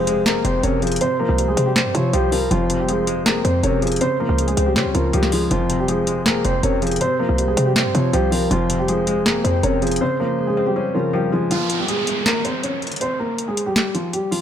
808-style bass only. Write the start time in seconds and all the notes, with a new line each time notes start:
Already playing: E1
0.45 F1
0.63 F1
1.29 C2
1.57 C3
1.85 G2
1.95 C3
2.13 C2
2.51 F1
3.45 F2
3.63 F1
4.29 C#2
4.57 C#2
4.76 C#3
4.85 C#2
4.95 C#2
5.14 C#2
5.51 F1
5.98 E1
6.45 F1
6.63 F1
7.29 C2
7.57 C3
7.85 G2
7.95 C3
8.13 C2
8.51 F1
9.45 F2
9.63 F1